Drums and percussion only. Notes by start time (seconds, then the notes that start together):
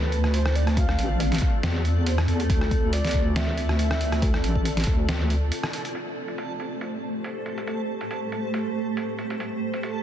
0.12 closed hi-hat
0.24 cross-stick
0.34 closed hi-hat
0.46 cross-stick
0.55 closed hi-hat
0.67 cross-stick, closed hi-hat
0.77 kick, closed hi-hat
0.89 cross-stick
0.99 closed hi-hat
1.20 closed hi-hat
1.32 snare, closed hi-hat
1.34 closed hi-hat
1.38 kick, closed hi-hat
1.63 snare, closed hi-hat
1.85 closed hi-hat
2.06 closed hi-hat
2.18 cross-stick
2.28 closed hi-hat
2.40 closed hi-hat
2.50 kick, closed hi-hat
2.61 cross-stick
2.71 kick, closed hi-hat
2.93 closed hi-hat
3.05 snare, closed hi-hat
3.07 closed hi-hat
3.11 kick, closed hi-hat
3.36 snare, closed hi-hat
3.58 closed hi-hat
3.69 cross-stick
3.79 closed hi-hat
3.91 cross-stick
4.01 closed hi-hat
4.12 cross-stick, closed hi-hat
4.22 kick, closed hi-hat
4.34 cross-stick
4.44 closed hi-hat
4.56 kick
4.65 closed hi-hat
4.77 snare, closed hi-hat
4.80 closed hi-hat
4.84 kick, closed hi-hat
5.09 snare, closed hi-hat
5.30 closed hi-hat
5.52 closed hi-hat
5.63 cross-stick
5.73 closed hi-hat
5.85 closed hi-hat
5.95 closed hi-hat
6.28 closed hi-hat
6.38 closed hi-hat
6.60 closed hi-hat
6.81 closed hi-hat
7.24 closed hi-hat
7.46 closed hi-hat
7.58 closed hi-hat
7.67 closed hi-hat
8.01 closed hi-hat
8.11 closed hi-hat
8.32 closed hi-hat
8.54 closed hi-hat
8.97 closed hi-hat
9.19 closed hi-hat
9.30 closed hi-hat
9.40 closed hi-hat
9.73 closed hi-hat
9.83 closed hi-hat